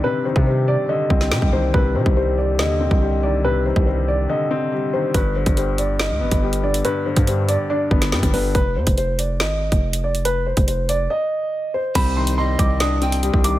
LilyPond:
<<
  \new Staff \with { instrumentName = "Pan flute" } { \time 4/4 \key c \minor \tempo 4 = 141 r1 | r1 | r1 | r1 |
r1 | r1 | r1 | c''4 ees''4. g''8 r4 | }
  \new Staff \with { instrumentName = "Grand piano" } { \time 4/4 \key c \minor b'8 c''8 c''8 d''8 ees''4. c''8 | b'8 c''8 c''8 d''8 ees''4. d''8 | b'8 c''8 c''8 d''8 ees''4. c''8 | b'8 c''8 c''8 d''8 ees''4. d''8 |
b'8 c''8 c''8 d''8 d''4. b'8 | b'8 c''8 c''8 d''8 ees''4. d''8 | b'8 c''8 c''8 d''8 ees''4. c''8 | b''8 c'''8 c'''8 d'''8 ees'''4. d'''8 | }
  \new Staff \with { instrumentName = "Felt piano" } { \clef bass \time 4/4 \key c \minor <c d ees g c'>8 ees8 g4 d8 c'8 g8 ees8 | c8 ees8 g4 d8 c'8 g8 ees8 | c8 ees8 g4 d8 c'8 g8 ees8 | g,8 d8 g4. b8 g8 d8 |
g,8 d8 g4 d'8 b8 g8 d8 | r1 | r1 | c8 ees8 g4 d'8 c'8 g8 ees8 | }
  \new Staff \with { instrumentName = "808-style bass" } { \clef bass \time 4/4 \key c \minor r8. c4 r8. c,8 c16 c,16 c,8 | c,8 c16 c,4~ c,16 ees,8. c,4~ c,16~ | c,8. c,4~ c,16 r2 | g,,8. g,,4. d,16 g,,16 g,,4~ g,,16 |
r8. g,4 r8. g,,8 g,16 g,,16 g,,8 | f,,8 f,16 f,,4~ f,,16 aes,,8. f,,4~ f,,16~ | f,,8. f,,4~ f,,16 r2 | c,4. c,4.~ c,16 c,8. | }
  \new DrumStaff \with { instrumentName = "Drums" } \drummode { \time 4/4 r8. bd16 r4 r8 bd16 sn16 sn16 bd8. | bd8. bd16 r4 sn8. bd16 r4 | r8. bd16 r4 r4 r4 | <hh bd>8. <hh bd>16 hh8 hh8 sn8. <hh bd>16 r16 hh8 hh16 |
hh8. <hh bd>16 hh8 hh8 r8 bd16 <hh sn>16 sn16 <hh bd>16 hho8 | <hh bd>8. <hh bd>16 hh8 hh8 sn8. <hh bd>16 r16 hh8 hh16 | hh8. <hh bd>16 hh8 hh8 r4 r4 | <cymc hh bd>8. hh16 r8 <hh bd>8 <hh sn>8 hh16 hh16 hh16 bd16 hh8 | }
>>